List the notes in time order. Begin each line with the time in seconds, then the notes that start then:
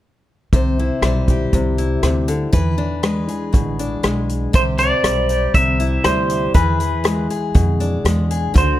0.53 C2 C3 C5, kick, closed hi-hat
0.79 E4
1.02 B1 G3 C5, cross-stick, closed hi-hat
1.28 G4, kick, closed hi-hat
1.53 C2 C3, kick, closed hi-hat
1.78 E4, closed hi-hat
2.03 D2 C3, cross-stick, closed hi-hat
2.28 D3, closed hi-hat
2.52 E2 E3 B4, kick, closed hi-hat
2.78 D4
3.03 G#3 B4, cross-stick, closed hi-hat
3.29 G#4, closed hi-hat
3.53 A1 B2, kick, closed hi-hat
3.79 D4, closed hi-hat
4.03 B1 G#3, cross-stick, closed hi-hat
4.29 closed hi-hat
4.53 C2 C3 G4 C5, kick, closed hi-hat
4.78 C5 D5, closed hi-hat
5.04 B1 G3, cross-stick, closed hi-hat
5.29 G4, closed hi-hat
5.54 C2 C3 E5, kick, closed hi-hat
5.80 E4, closed hi-hat
6.04 D2 G3 C5, cross-stick, closed hi-hat
6.30 G4, closed hi-hat
6.54 E2 E3 G#4 B4, kick, closed hi-hat
6.80 G#4, closed hi-hat
7.04 G#3, cross-stick, closed hi-hat
7.30 G#4, closed hi-hat
7.55 F2 B2, kick, closed hi-hat
7.80 D4, closed hi-hat
8.05 E2 G#3, cross-stick, closed hi-hat
8.31 G#4, closed hi-hat
8.54 D2 D3 F#4 C5, kick, closed hi-hat